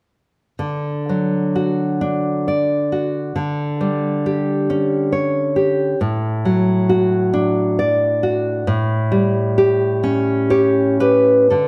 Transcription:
0.59 3.33 D3 soft
1.09 2.48 F#3 soft
1.55 2.91 F#4 soft
2.01 3.37 D4 soft
2.48 3.37 D5 soft
2.92 3.37 F#4 soft
3.36 5.94 D3 soft
3.81 5.12 G3 soft
4.26 5.55 G4 soft
4.70 5.99 C#4 soft
5.12 5.99 C#5 soft
5.56 5.99 G4 soft
6.01 8.63 A2 soft
6.45 7.77 F#3 soft
6.89 8.22 F#4 soft
7.34 8.67 D4 medium
7.79 8.67 D5 soft
8.23 8.67 F#4 soft
8.67 11.50 A2 medium
9.12 10.53 G3 soft
9.58 10.49 G4 medium
10.03 11.51 C#4 medium
10.50 11.00 G4 medium
10.50 11.52 C#5 soft
11.00 11.52 G4 soft
11.00 11.50 B4 medium
11.50 11.68 D3 soft
11.50 11.68 A4 soft

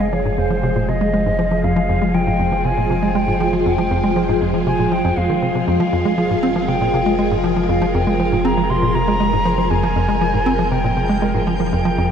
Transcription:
0.00 5.65 F1 medium
0.00 12.11 F3 medium
0.00 12.11 G#3 medium
0.00 12.11 F4 medium
0.00 1.66 G#4 medium
0.00 12.11 G#4 medium
0.00 0.14 D#5 medium
0.13 0.21 F3 medium
0.13 0.40 C#5 medium
0.25 0.30 G#2 medium
0.38 0.50 F2 medium
0.38 0.90 C5 medium
0.50 0.55 F3 medium
0.63 0.71 C3 medium
0.76 0.84 A#2 medium
0.88 0.96 C3 medium
0.88 1.66 D#5 medium
1.01 1.09 G#3 medium
1.13 1.25 G#3 medium
1.26 1.31 G#2 medium
1.39 1.47 F3 medium
1.51 1.56 F3 medium
1.64 1.76 F2 medium
1.64 5.70 C5 medium
1.64 2.16 F5 medium
1.76 1.81 F3 loud
1.89 2.01 F2 medium
2.02 2.10 G#3 medium
2.14 2.22 F3 medium
2.14 2.67 G5 loud
2.27 2.32 G#2 medium
2.39 2.51 F2 medium
2.52 2.57 F3 medium
2.65 2.73 C3 medium
2.65 3.17 G#5 loud
2.77 2.85 A#2 medium
2.90 2.98 C3 medium
3.02 3.10 G#3 medium
3.15 3.27 G#3 medium
3.15 3.53 G5 medium
3.28 3.33 G#2 medium
3.40 3.48 F3 medium
3.53 3.58 F3 medium
3.66 3.78 F2 loud
3.66 4.36 G5 medium
3.78 3.83 F3 medium
3.91 4.03 F2 loud
4.03 4.11 G#3 medium
4.16 4.24 F3 medium
4.29 4.33 G#2 medium
4.41 4.53 F2 medium
4.54 4.59 F3 medium
4.67 4.74 C3 medium
4.67 4.94 G#5 loud
4.79 4.87 A#2 medium
4.92 5.00 F3 medium
4.92 5.19 G5 medium
5.04 5.12 F2 loud
5.17 5.29 F2 medium
5.17 5.67 F5 medium
5.30 5.38 D#3 medium
5.42 5.50 C3 medium
5.55 5.63 C3 medium
5.67 12.11 F1 medium
5.67 5.79 F2 loud
5.67 9.73 G#4 medium
5.67 12.11 A#4 medium
5.67 6.70 F5 loud
5.80 5.85 F3 loud
5.93 6.04 F2 loud
6.05 6.13 G#3 medium
6.18 6.26 F3 medium
6.30 6.35 G#2 medium
6.43 6.51 C4 medium
6.56 6.60 F3 medium
6.68 6.76 C3 medium
6.68 7.44 G5 medium
6.81 6.89 A#2 medium
6.94 7.01 C3 medium
7.06 7.14 G#3 medium
7.19 7.30 G#3 medium
7.31 7.36 G#2 medium
7.44 7.52 F3 medium
7.56 7.61 F3 medium
7.69 7.81 F2 loud
7.69 7.96 F5 medium
7.82 7.86 F3 loud
7.94 8.06 F2 loud
7.94 8.46 G5 medium
8.07 8.15 G#3 medium
8.19 8.27 F3 medium
8.32 8.37 G#2 medium
8.45 8.53 C4 loud
8.45 8.71 A#5 loud
8.57 8.62 F3 medium
8.70 8.78 C3 medium
8.70 8.96 C6 loud
8.82 8.90 A#2 medium
8.95 9.03 C3 medium
8.95 9.72 A#5 loud
9.08 9.16 G#3 medium
9.20 9.32 G#3 medium
9.33 9.38 G#2 medium
9.45 9.53 F3 loud
9.58 9.63 F3 medium
9.70 9.83 F2 loud
9.70 10.73 G#5 loud
9.70 12.11 G6 medium
9.83 9.88 F3 medium
9.96 10.08 F2 loud
10.08 10.16 G#3 medium
10.21 10.29 F3 medium
10.34 10.38 G#2 medium
10.46 10.54 C4 loud
10.59 10.64 F3 medium
10.71 10.79 C3 medium
10.71 11.47 G5 medium
10.84 10.92 A#2 medium
10.97 11.05 C3 medium
11.09 11.17 G#3 medium
11.22 11.34 G#3 medium
11.34 11.39 G#2 medium
11.47 11.55 F3 medium
11.60 11.65 F3 medium
11.72 11.84 F2 loud
11.72 12.11 G5 loud
11.85 11.90 F3 loud
11.98 12.10 F2 loud

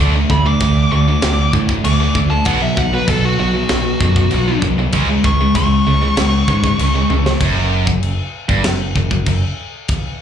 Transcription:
0.00 0.23 D2 medium
0.00 0.12 D3 medium
0.00 0.12 A3 medium
0.00 0.13 D4 loud
0.15 0.29 D3 medium
0.15 0.28 A3 medium
0.30 0.53 D2 medium
0.30 0.45 D3 medium
0.30 0.44 A3 medium
0.30 0.46 B5 loud
0.30 kick medium
0.46 0.60 D3 medium
0.46 0.60 A3 medium
0.46 0.91 D6 loud
0.60 0.84 D2 medium
0.60 0.89 D3 medium
0.60 0.89 A3 medium
0.60 kick medium
0.60 crash medium
0.92 1.15 D2 medium
0.92 1.07 D3 medium
0.92 1.07 A3 medium
0.92 1.52 D6 loud
1.08 1.22 D3 medium
1.08 1.22 A3 medium
1.22 1.47 D2 medium
1.22 1.51 D3 medium
1.22 1.51 A3 medium
1.22 snare loud
1.22 crash medium
1.53 1.77 A2 medium
1.53 1.69 D3 medium
1.53 1.68 A3 medium
1.53 kick medium
1.69 1.83 D3 medium
1.69 1.84 A3 medium
1.69 kick loud
1.84 2.09 D2 medium
1.84 1.99 D3 medium
1.84 1.99 A3 medium
1.84 2.15 D6 loud
1.84 crash medium
2.00 2.16 D3 medium
2.00 2.15 A3 medium
2.15 2.39 D2 medium
2.15 2.30 D3 medium
2.15 2.30 A3 medium
2.15 kick medium
2.30 2.46 D3 medium
2.30 2.47 A3 medium
2.30 2.46 A5 loud
2.45 2.70 B1 loud
2.45 2.60 B2 medium
2.45 2.61 F#3 medium
2.45 2.61 B3 loud
2.45 2.62 F#5 loud
2.45 kick loud
2.45 crash medium
2.62 2.76 B2 medium
2.62 2.76 F#3 medium
2.62 2.78 E5 medium
2.77 3.01 B1 medium
2.77 2.92 B2 medium
2.77 2.92 F#3 medium
2.77 2.93 F#5 loud
2.77 kick medium
2.93 3.07 B2 medium
2.93 3.08 F#3 medium
2.93 3.09 B4 loud
3.08 3.32 B1 medium
3.08 3.36 B2 medium
3.08 3.37 F#3 medium
3.08 3.24 A4 medium
3.08 kick medium
3.08 crash medium
3.25 3.39 F#4 loud
3.39 3.64 B1 medium
3.39 3.54 B2 medium
3.39 3.54 F#3 medium
3.39 4.60 F#4 loud
3.55 3.69 B2 medium
3.55 3.69 F#3 medium
3.69 3.94 B1 medium
3.69 3.98 B2 medium
3.69 3.98 F#3 medium
3.69 snare loud
3.69 crash medium
4.01 4.25 F#2 medium
4.01 4.16 B2 medium
4.01 4.15 F#3 medium
4.01 kick medium
4.16 4.30 B2 medium
4.16 4.30 F#3 medium
4.16 kick medium
4.31 4.56 B1 medium
4.31 4.47 B2 medium
4.31 4.47 F#3 medium
4.31 crash medium
4.48 4.62 B2 medium
4.48 4.62 F#3 medium
4.62 4.86 C2 medium
4.62 4.77 B2 medium
4.62 4.77 F#3 medium
4.62 kick medium
4.78 4.94 B2 medium
4.78 4.94 F#3 medium
4.92 5.17 C#2 loud
4.92 5.08 C#3 medium
4.92 5.08 G#3 loud
4.92 5.08 C#4 loud
4.92 kick loud
4.92 crash medium
5.10 5.24 C#3 medium
5.10 5.24 G#3 medium
5.24 5.48 C#2 medium
5.24 5.40 C#3 medium
5.24 5.40 G#3 medium
5.24 5.55 C#6 loud
5.24 kick medium
5.41 5.56 C#3 medium
5.41 5.56 G#3 medium
5.55 5.79 C#2 loud
5.55 5.84 C#3 medium
5.55 5.84 G#3 medium
5.55 7.38 C#6 medium
5.55 kick medium
5.55 crash medium
5.87 6.11 C#2 medium
5.87 6.01 C#3 medium
5.87 6.01 G#3 medium
6.02 6.15 C#3 medium
6.02 6.16 G#3 medium
6.17 6.41 C#2 medium
6.17 6.45 C#3 medium
6.17 6.45 G#3 medium
6.17 snare loud
6.17 crash medium
6.48 6.72 G#2 medium
6.48 6.63 C#3 medium
6.48 6.63 G#3 medium
6.48 kick medium
6.64 6.78 C#3 medium
6.64 6.78 G#3 medium
6.64 kick medium
6.79 7.03 C#2 medium
6.79 6.93 C#3 medium
6.79 6.93 G#3 medium
6.79 crash medium
6.94 7.09 C#3 medium
6.94 7.09 G#3 medium
7.10 7.34 C#2 medium
7.10 7.25 C#3 medium
7.10 7.25 G#3 medium
7.10 high tom medium
7.26 7.42 C#3 medium
7.26 7.42 G#3 medium
7.26 snare medium
7.41 7.84 F#1 medium
7.41 7.86 F#2 loud
7.41 kick loud
7.41 crash medium
7.87 8.16 F#1 medium
7.87 8.12 F#2 medium
7.87 kick medium
8.03 crash medium
8.49 8.64 G1 medium
8.49 8.64 G2 medium
8.49 kick loud
8.64 8.94 F#1 medium
8.64 8.90 F#2 medium
8.64 snare loud
8.64 crash medium
8.96 9.11 F#1 medium
8.96 9.10 F#2 medium
8.96 kick medium
9.11 9.26 F#1 medium
9.11 9.27 F#2 medium
9.11 kick medium
9.26 9.42 F#1 medium
9.26 9.43 F#2 medium
9.26 kick medium
9.26 crash medium
9.88 kick loud
9.88 crash medium

